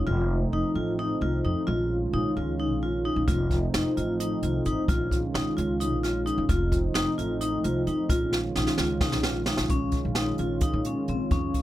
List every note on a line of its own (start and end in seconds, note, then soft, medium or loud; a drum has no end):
0.05 0.44 F1 loud
0.05 1.63 F3 medium
0.05 1.64 A3 medium
0.05 1.64 C4 medium
0.05 1.65 D#4 medium
0.05 0.34 F4 medium
0.52 0.62 F1 medium
0.52 0.67 D#4 medium
0.75 1.13 A1 medium
0.75 0.89 F4 medium
0.99 1.13 D#4 medium
1.21 1.40 C2 medium
1.21 1.36 F4 medium
1.45 1.54 F2 medium
1.45 1.58 D#4 medium
1.66 2.05 A#1 medium
1.66 3.24 D#3 medium
1.66 3.24 G#3 medium
1.66 3.25 C#4 medium
1.66 1.95 F4 medium
1.66 3.25 F4 medium
2.13 2.23 A#1 medium
2.13 2.27 D#4 medium
2.37 2.71 C#2 medium
2.37 2.50 F4 medium
2.60 2.73 D#4 medium
2.71 3.08 A#1 medium
2.83 2.96 F4 medium
3.05 3.19 D#4 medium
3.16 3.26 A#1 medium
3.26 3.65 F1 medium
3.26 4.84 F3 medium
3.26 4.85 A3 medium
3.26 4.85 C4 medium
3.26 4.86 D#4 medium
3.26 3.55 F4 medium
3.26 kick medium
3.26 closed hi-hat medium
3.51 kick medium
3.51 closed hi-hat medium
3.74 3.83 F1 medium
3.74 3.88 D#4 medium
3.74 snare medium
3.74 closed hi-hat medium
3.97 4.34 A1 medium
3.97 4.11 F4 medium
3.97 closed hi-hat medium
4.20 4.34 D#4 medium
4.20 closed hi-hat medium
4.43 4.61 C2 medium
4.43 4.57 F4 medium
4.43 closed hi-hat medium
4.65 4.75 A1 medium
4.65 4.80 D#4 medium
4.65 closed hi-hat medium
4.86 5.26 A#1 medium
4.86 6.44 D#3 medium
4.86 6.45 G#3 medium
4.86 6.45 C#4 medium
4.86 6.46 F4 medium
4.86 5.16 F4 medium
4.86 kick medium
4.86 closed hi-hat medium
5.11 kick medium
5.11 closed hi-hat medium
5.34 5.44 A#1 medium
5.34 5.48 D#4 medium
5.34 snare medium
5.34 closed hi-hat medium
5.57 5.92 C#2 medium
5.57 5.71 F4 medium
5.57 closed hi-hat medium
5.80 5.94 D#4 medium
5.80 closed hi-hat medium
5.92 6.29 A#1 medium
6.03 6.17 F4 medium
6.03 snare soft
6.03 closed hi-hat medium
6.26 6.40 D#4 medium
6.26 closed hi-hat medium
6.38 6.47 F#1 medium
6.47 6.86 F1 loud
6.47 8.05 F3 medium
6.47 8.06 A3 medium
6.47 8.06 C4 medium
6.47 8.07 D#4 medium
6.47 6.77 F4 loud
6.47 kick medium
6.47 closed hi-hat medium
6.72 kick medium
6.72 closed hi-hat medium
6.95 7.05 F1 medium
6.95 7.08 D#4 medium
6.95 snare loud
6.95 closed hi-hat medium
7.18 7.56 A1 medium
7.18 7.32 F4 medium
7.18 closed hi-hat medium
7.41 7.55 D#4 medium
7.41 closed hi-hat medium
7.64 7.83 C2 medium
7.64 7.78 F4 medium
7.64 closed hi-hat medium
7.87 7.96 F2 medium
7.87 8.01 D#4 medium
7.87 closed hi-hat soft
8.07 8.47 A#1 medium
8.07 9.66 D#3 medium
8.07 9.67 G#3 medium
8.07 9.67 C#4 medium
8.07 8.37 F4 loud
8.07 9.68 F4 medium
8.07 kick medium
8.07 closed hi-hat medium
8.33 snare medium
8.56 8.65 A#1 medium
8.56 8.69 D#4 medium
8.56 snare medium
8.67 snare medium
8.78 9.13 C#2 medium
8.78 8.93 F4 medium
8.78 snare medium
9.01 9.15 D#4 medium
9.01 kick loud
9.01 snare medium
9.12 9.50 A#1 medium
9.12 snare medium
9.23 9.38 F4 medium
9.23 snare medium
9.46 9.61 D#4 medium
9.46 snare medium
9.57 9.68 A#1 medium
9.57 snare medium
9.68 9.98 A#1 medium
9.68 11.62 D#3 medium
9.68 11.62 G#3 medium
9.68 9.98 C#4 medium
9.68 11.62 C#4 medium
9.68 11.62 F4 medium
9.68 kick medium
9.68 closed hi-hat medium
9.92 kick medium
9.92 closed hi-hat medium
10.05 10.33 A#1 medium
10.15 10.30 D#4 medium
10.15 snare medium
10.15 closed hi-hat medium
10.38 10.67 A#1 medium
10.38 10.53 F4 medium
10.38 closed hi-hat medium
10.61 10.77 D#4 medium
10.61 kick medium
10.61 closed hi-hat medium
10.73 10.92 A#2 medium
10.84 11.00 C#4 medium
10.84 closed hi-hat medium
11.08 11.18 A#1 medium
11.08 11.23 C4 medium
11.08 closed hi-hat soft
11.31 11.50 F2 medium
11.31 11.59 C#4 medium
11.31 kick medium
11.31 closed hi-hat medium
11.54 kick medium
11.54 closed hi-hat medium